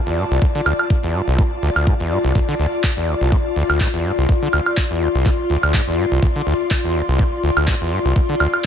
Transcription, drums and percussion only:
0.42 kick
0.66 high woodblock
0.79 high woodblock
0.90 kick
1.39 kick
1.76 high woodblock
1.87 kick
2.35 kick
2.84 kick, clap
3.32 kick
3.70 high woodblock
3.80 kick, clap
4.29 kick
4.53 high woodblock
4.66 high woodblock
4.77 kick, clap
5.26 kick, clap
5.63 high woodblock
5.74 kick, clap
6.23 kick
6.71 kick, clap
7.19 kick
7.57 high woodblock
7.68 kick, clap
8.16 kick
8.40 high woodblock
8.54 high woodblock

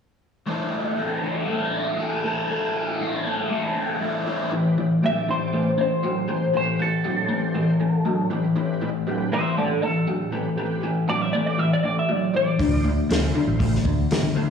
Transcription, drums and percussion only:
12.60 kick, open hi-hat
13.10 snare, open hi-hat
13.60 kick, open hi-hat
13.75 snare
13.85 kick
14.11 snare, open hi-hat

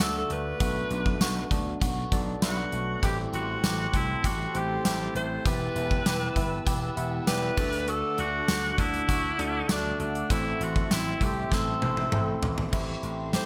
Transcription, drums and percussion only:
0.00 snare, closed hi-hat, tambourine
0.30 closed hi-hat
0.60 kick, closed hi-hat
0.91 closed hi-hat
1.06 kick
1.21 snare, closed hi-hat, tambourine
1.51 kick, closed hi-hat
1.81 kick, closed hi-hat
2.12 kick, closed hi-hat
2.42 snare, closed hi-hat, tambourine
2.72 closed hi-hat
3.03 kick, closed hi-hat
3.33 closed hi-hat
3.64 snare, closed hi-hat, tambourine
3.94 kick, closed hi-hat
4.24 kick, closed hi-hat
4.55 closed hi-hat
4.85 snare, closed hi-hat, tambourine
5.16 closed hi-hat
5.46 kick, closed hi-hat
5.76 closed hi-hat
5.91 kick
6.06 snare, closed hi-hat, tambourine
6.36 kick, closed hi-hat
6.67 kick, closed hi-hat
6.97 closed hi-hat
7.27 snare, closed hi-hat, tambourine
7.57 kick, crash
7.73 closed hi-hat
7.88 closed hi-hat
8.18 closed hi-hat
8.48 snare, closed hi-hat, tambourine
8.78 kick, closed hi-hat
8.94 closed hi-hat
9.09 kick, closed hi-hat
9.39 closed hi-hat
9.69 snare, closed hi-hat, tambourine
10.00 closed hi-hat
10.15 closed hi-hat
10.30 kick, closed hi-hat
10.61 closed hi-hat
10.76 kick
10.91 snare, closed hi-hat, tambourine
11.21 kick, closed hi-hat
11.52 kick, snare
11.82 high tom
11.97 high tom
12.12 mid tom
12.43 floor tom
12.58 floor tom
12.73 kick, crash
13.03 closed hi-hat
13.33 snare, closed hi-hat

